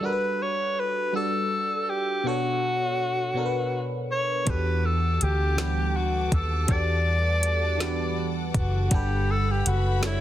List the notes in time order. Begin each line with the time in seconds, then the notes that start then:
0.00 G3 D4 F#4 A4
0.05 A#4 B4
0.12 B4
0.43 C#5
0.80 B4
1.13 G3 D4 F#4 A4
1.17 D5
1.89 G4
2.24 B2 B3 D4 A4
2.28 F#4 C#5
3.34 B2 B3 D4 A4
3.38 A#4
3.46 B4
4.12 C#5
4.45 E2 E3 B3 D4 F#4 G4 A4 F#5 A5 D6, kick, closed hi-hat
4.49 A4 B4
4.86 A4
5.21 D2 G4, closed hi-hat
5.56 E3 G3 B3 D4 F#5, snare, closed hi-hat
5.61 B4
5.97 F#4
6.32 D#2 A4, kick, closed hi-hat
6.67 E2 E3 B3 D4 F#4, kick, closed hi-hat
6.71 G4 A4 D5
7.43 closed hi-hat
7.78 E3 B3 D4 F#4, snare, closed hi-hat
7.82 G4 B4
8.54 F#1 F#4, kick, closed hi-hat
8.90 G1 G3 D4 F#5 B5, kick, closed hi-hat
8.94 G4 A4 B4
9.31 A4
9.51 G4
9.66 F#1 F#4, closed hi-hat
10.00 G3 D4 F#4 A4, snare, closed hi-hat
10.05 E4 C#5